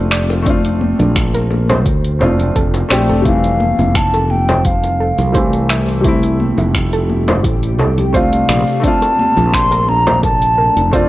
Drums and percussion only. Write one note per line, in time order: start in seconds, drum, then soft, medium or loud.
0.11 finger snap medium
0.30 high bongo medium
0.30 shaker medium
0.46 kick loud
0.46 closed hi-hat medium
0.46 shaker medium
0.65 closed hi-hat soft
0.65 shaker soft
0.81 high conga medium
0.99 closed hi-hat soft
0.99 high bongo soft
0.99 low conga loud
0.99 shaker medium
1.16 finger snap medium
1.16 kick loud
1.16 closed hi-hat medium
1.16 shaker medium
1.35 closed hi-hat soft
1.35 shaker soft
1.51 high bongo medium
1.51 high conga medium
1.70 closed hi-hat soft
1.70 low conga medium
1.70 shaker medium
1.86 kick loud
1.86 closed hi-hat medium
1.86 shaker medium
2.05 closed hi-hat soft
2.05 shaker soft
2.21 high bongo medium
2.21 low conga medium
2.39 closed hi-hat soft
2.39 low conga medium
2.39 shaker medium
2.56 kick loud
2.56 closed hi-hat medium
2.56 shaker medium
2.74 closed hi-hat soft
2.74 high bongo medium
2.74 shaker soft
2.90 finger snap medium
3.09 shaker medium
3.25 kick loud
3.25 closed hi-hat medium
3.25 shaker medium
3.44 closed hi-hat soft
3.44 shaker soft
3.60 high bongo soft
3.60 high conga medium
3.79 high conga medium
3.79 low conga medium
3.79 shaker medium
3.95 finger snap medium
3.95 kick loud
3.95 closed hi-hat medium
3.95 shaker medium
4.14 closed hi-hat soft
4.14 high bongo medium
4.14 shaker soft
4.30 high conga medium
4.49 closed hi-hat soft
4.49 low conga medium
4.49 shaker medium
4.65 kick loud
4.65 closed hi-hat medium
4.65 shaker medium
4.84 closed hi-hat soft
4.84 high bongo soft
4.84 shaker soft
5.18 closed hi-hat soft
5.18 low conga medium
5.18 shaker medium
5.34 kick loud
5.34 closed hi-hat medium
5.34 high bongo medium
5.34 shaker medium
5.53 closed hi-hat soft
5.53 shaker soft
5.69 finger snap medium
5.88 shaker medium
6.04 kick loud
6.04 closed hi-hat medium
6.04 high bongo soft
6.04 shaker soft
6.23 closed hi-hat soft
6.23 shaker soft
6.40 high conga medium
6.58 high bongo medium
6.58 low conga medium
6.58 shaker medium
6.74 finger snap medium
6.74 kick loud
6.74 closed hi-hat medium
6.74 shaker medium
6.93 closed hi-hat soft
6.93 shaker soft
7.09 high conga medium
7.28 closed hi-hat soft
7.28 high bongo medium
7.28 low conga medium
7.28 shaker medium
7.44 kick loud
7.44 closed hi-hat medium
7.44 shaker medium
7.63 closed hi-hat soft
7.63 shaker soft
7.79 high bongo medium
7.79 low conga medium
7.98 closed hi-hat soft
7.98 low conga medium
7.98 shaker medium
8.14 kick loud
8.14 closed hi-hat medium
8.14 shaker medium
8.33 closed hi-hat soft
8.33 shaker soft
8.49 finger snap medium
8.49 high bongo soft
8.68 shaker medium
8.84 kick loud
8.84 closed hi-hat medium
8.84 shaker soft
9.02 closed hi-hat soft
9.02 high bongo medium
9.02 shaker soft
9.19 high conga medium
9.37 high conga medium
9.37 low conga medium
9.37 shaker medium
9.53 finger snap medium
9.53 kick loud
9.53 closed hi-hat medium
9.53 shaker medium
9.71 closed hi-hat soft
9.71 high bongo medium
9.71 shaker soft
9.89 high conga medium
10.07 closed hi-hat soft
10.07 low conga medium
10.07 shaker medium
10.23 kick loud
10.23 closed hi-hat medium
10.23 high bongo medium
10.23 shaker medium
10.42 closed hi-hat soft
10.42 shaker soft
10.77 closed hi-hat soft
10.77 low conga medium
10.77 shaker medium
10.93 kick loud
10.93 closed hi-hat medium
10.93 high bongo medium
10.93 shaker medium